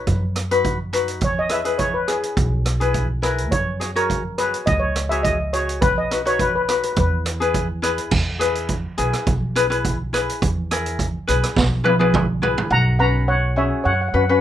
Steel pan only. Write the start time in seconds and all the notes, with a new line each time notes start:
Already playing: B4
1.24 C#5
1.39 D#5
1.52 E5
1.78 C#5
1.94 B4
2.08 G#4
3.23 B4
3.51 C#5
3.96 A#4
4.38 B4
4.66 D#5
4.80 C#5
5.09 E5
5.23 D#5
5.53 C#5
5.81 B4
5.98 D#5
6.27 C#5
6.40 B4
6.55 B4
6.62 B4
6.69 B4
6.76 B4
6.84 B4
6.92 B4
6.99 B4
12.71 F#5 A#5
12.99 F#5 A#5
13.28 C#5 F#5
13.57 C#5 E5
13.84 C#5 F#5
13.93 F#5
14.01 F#5
14.08 F#5
14.16 F#5
14.24 F#5
14.31 F#5